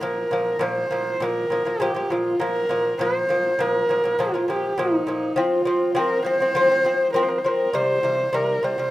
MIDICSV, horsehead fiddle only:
0, 0, Header, 1, 2, 480
1, 0, Start_track
1, 0, Tempo, 593472
1, 499, Time_signature, 4, 2, 24, 8
1, 7203, End_track
2, 0, Start_track
2, 0, Title_t, "Horsehead fiddle"
2, 0, Program_c, 0, 110
2, 31, Note_on_c, 0, 70, 79
2, 511, Note_on_c, 0, 72, 84
2, 523, Note_off_c, 0, 70, 0
2, 999, Note_on_c, 0, 70, 90
2, 1012, Note_off_c, 0, 72, 0
2, 1468, Note_on_c, 0, 67, 80
2, 1480, Note_off_c, 0, 70, 0
2, 1705, Note_on_c, 0, 65, 78
2, 1717, Note_off_c, 0, 67, 0
2, 1944, Note_on_c, 0, 70, 86
2, 1956, Note_off_c, 0, 65, 0
2, 2424, Note_off_c, 0, 70, 0
2, 2441, Note_on_c, 0, 72, 85
2, 2923, Note_on_c, 0, 70, 88
2, 2935, Note_off_c, 0, 72, 0
2, 3400, Note_on_c, 0, 65, 83
2, 3412, Note_off_c, 0, 70, 0
2, 3637, Note_on_c, 0, 67, 80
2, 3649, Note_off_c, 0, 65, 0
2, 3866, Note_on_c, 0, 63, 79
2, 3878, Note_off_c, 0, 67, 0
2, 4359, Note_on_c, 0, 65, 87
2, 4371, Note_off_c, 0, 63, 0
2, 4841, Note_on_c, 0, 70, 91
2, 4853, Note_off_c, 0, 65, 0
2, 5060, Note_off_c, 0, 70, 0
2, 5065, Note_on_c, 0, 72, 101
2, 5749, Note_off_c, 0, 72, 0
2, 5764, Note_on_c, 0, 70, 72
2, 5848, Note_on_c, 0, 72, 77
2, 5860, Note_off_c, 0, 70, 0
2, 5894, Note_on_c, 0, 70, 68
2, 5906, Note_off_c, 0, 72, 0
2, 5969, Note_on_c, 0, 72, 74
2, 5981, Note_off_c, 0, 70, 0
2, 6047, Note_on_c, 0, 70, 85
2, 6060, Note_off_c, 0, 72, 0
2, 6268, Note_on_c, 0, 72, 91
2, 6280, Note_off_c, 0, 70, 0
2, 6750, Note_on_c, 0, 70, 85
2, 6762, Note_off_c, 0, 72, 0
2, 6989, Note_on_c, 0, 72, 100
2, 7001, Note_off_c, 0, 70, 0
2, 7203, Note_off_c, 0, 72, 0
2, 7203, End_track
0, 0, End_of_file